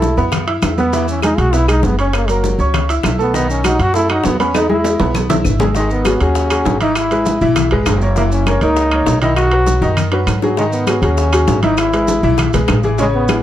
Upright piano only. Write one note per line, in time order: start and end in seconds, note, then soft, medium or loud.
0.00 0.12 A3 medium
0.00 0.12 A4 medium
0.00 0.12 A5 medium
0.18 0.42 B3 medium
0.18 0.42 B4 medium
0.18 0.43 B5 medium
0.47 0.72 E4 medium
0.47 0.72 E5 medium
0.47 0.72 E6 medium
0.78 0.90 B3 medium
0.78 0.90 B4 medium
0.78 0.91 B5 medium
0.93 1.18 E3 medium
0.93 1.18 E4 medium
0.93 1.18 E5 medium
1.23 1.48 G#3 medium
1.23 1.48 G#4 medium
1.23 1.48 G#5 medium
1.53 1.66 B3 medium
1.53 1.66 B4 medium
1.53 1.66 B5 medium
1.68 1.93 G#3 medium
1.68 1.93 G#4 medium
1.68 1.93 G#5 medium
1.99 2.23 C#4 medium
1.99 2.24 C#5 medium
1.99 2.24 C#6 medium
2.29 2.54 A#3 medium
2.29 2.54 A#4 medium
2.29 2.54 A#5 medium
2.59 2.84 C#4 medium
2.59 2.84 C#5 medium
2.59 2.84 C#6 medium
2.90 3.14 E4 medium
2.90 3.14 E5 medium
2.90 3.14 E6 medium
3.18 3.31 A3 medium
3.18 3.31 A4 medium
3.18 3.32 A5 medium
3.34 3.59 D#3 medium
3.34 3.59 D#4 medium
3.34 3.59 D#5 medium
3.64 3.89 F#3 medium
3.64 3.89 F#4 medium
3.64 3.89 F#5 medium
3.94 4.07 A3 medium
3.94 4.07 A4 medium
3.94 4.07 A5 medium
4.09 4.34 F#3 medium
4.09 4.34 F#4 medium
4.09 4.34 F#5 medium
4.40 4.64 B3 medium
4.40 4.64 B4 medium
4.40 4.65 B5 medium
4.69 4.94 G#3 medium
4.69 4.94 G#4 medium
4.69 4.95 G#5 medium
5.00 5.25 B3 medium
5.00 5.25 B4 medium
5.00 5.25 B5 medium
5.29 5.54 E4 medium
5.29 5.55 E5 medium
5.29 5.55 E6 medium
5.60 5.72 G#3 medium
5.60 5.73 G#4 medium
5.60 5.73 G#5 medium
5.75 6.00 D#3 medium
5.75 6.01 D#4 medium
5.75 6.01 D#5 medium
6.06 6.18 F#3 medium
6.06 6.18 F#4 medium
6.06 6.18 G#4 medium
6.21 6.45 F#3 medium
6.21 6.45 F#4 medium
6.21 6.46 G#4 medium
6.51 6.75 F#3 medium
6.51 6.75 F#4 medium
6.51 6.76 G#4 medium
6.81 7.06 E3 medium
6.81 7.06 E4 medium
6.81 7.06 E5 medium
7.11 7.36 G#3 medium
7.11 7.36 G#4 medium
7.11 7.36 B4 medium
7.42 7.66 E3 medium
7.42 7.66 E4 medium
7.42 7.66 E5 medium
7.72 7.96 G#3 medium
7.72 7.97 G#4 medium
7.72 7.97 B4 medium
8.02 8.14 A#3 medium
8.02 8.14 A#4 medium
8.02 8.14 C#5 medium
8.17 8.42 E3 medium
8.17 8.42 E4 medium
8.17 8.42 E5 medium
8.47 8.59 A#3 medium
8.47 8.60 A#4 medium
8.47 8.60 C#5 medium
8.62 8.87 A#3 medium
8.62 8.87 A#4 medium
8.62 8.87 C#5 medium
8.93 9.17 A#3 medium
8.93 9.17 A#4 medium
8.93 9.17 C#5 medium
9.22 9.47 D#3 medium
9.22 9.47 D#4 medium
9.22 9.47 D#5 medium
9.52 9.77 F#3 medium
9.52 9.77 F#4 medium
9.52 9.77 B4 medium
9.82 10.07 D#3 medium
9.82 10.07 D#4 medium
9.82 10.07 D#5 medium
10.12 10.37 F#3 medium
10.12 10.37 F#4 medium
10.12 10.38 B4 medium
10.43 10.55 F#3 medium
10.43 10.55 F#4 medium
10.43 10.56 G#4 medium
10.58 10.83 D#3 medium
10.58 10.83 D#4 medium
10.58 10.83 D#5 medium
10.88 11.00 F#3 medium
10.88 11.01 F#4 medium
10.88 11.01 G#4 medium
11.03 11.28 F#3 medium
11.03 11.28 F#4 medium
11.03 11.28 G#4 medium
11.33 11.58 F#3 medium
11.33 11.58 F#4 medium
11.33 11.58 G#4 medium
11.63 11.88 E3 medium
11.63 11.88 E4 medium
11.63 11.88 E5 medium
11.94 12.18 G#3 medium
11.94 12.18 G#4 medium
11.94 12.18 B4 medium
12.24 12.48 E3 medium
12.24 12.49 E4 medium
12.24 12.49 E5 medium
12.53 12.78 G#3 medium
12.53 12.79 G#4 medium
12.53 12.79 B4 medium
12.84 12.96 E3 medium
12.84 12.96 E4 medium
12.84 12.97 G#4 medium
12.99 13.24 C#3 medium
12.99 13.24 C#4 medium
12.99 13.24 C#5 medium
13.29 13.41 E3 medium
13.29 13.41 E4 medium
13.29 13.42 G#4 medium